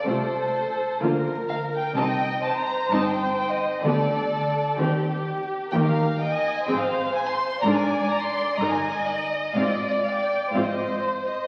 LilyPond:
<<
  \new Staff \with { instrumentName = "Violin section" } { \time 4/4 \key c \dorian \tempo 4 = 126 c''2~ c''8 r8 f''8 g''8 | a''16 g''8. a''16 bes''8. a''16 g''8. g''16 ees''8. | d''2~ d''8 r4. | \key ees \major g''16 f''8. g''16 aes''8. g''16 f''8. aes''16 c'''8. |
bes''16 aes''8. bes''16 c'''8. bes''16 aes''8. d''8 ees''8 | f''16 ees''8. f''16 g''8. f''16 ees''8. c''8 ees''8 | }
  \new Staff \with { instrumentName = "Violin section" } { \time 4/4 \key c \dorian a'2 bes'2 | ees''4 c''2. | a'2 g'2 | \key ees \major bes'4 ees''4 c''2 |
d''2 ees''2 | d''2 c''2 | }
  \new Staff \with { instrumentName = "Viola section" } { \time 4/4 \key c \dorian <a f'>8 r4. <bes f'>8 r4. | <c' ees'>8 r4. <c' ees'>8 r4. | <b g'>8 r4. <c' g'>8 r4. | \key ees \major <bes g'>8 r4. <c' aes'>8 r4. |
<d' bes'>8 r4. <ees' bes'>8 r4. | <c' f'>8 r4. <c' f'>8 r4. | }
  \new Staff \with { instrumentName = "Cello section" } { \clef bass \time 4/4 \key c \dorian c4 r4 d4 r4 | c4 r4 g,4 r4 | d4 r4 ees4 r4 | \key ees \major ees4 r4 aes,4 r4 |
aes,4 r4 g,4 r4 | aes,4 r4 aes,4 r4 | }
  \new Staff \with { instrumentName = "Double bass section" } { \clef bass \time 4/4 \key c \dorian c,4 r4 d,4 r4 | c,4 r4 g,,4 r4 | d,4 r4 ees,4 r4 | \key ees \major ees,4 r4 aes,,4 r4 |
aes,,4 r4 g,,4 r4 | aes,,4 r4 aes,,4 r4 | }
>>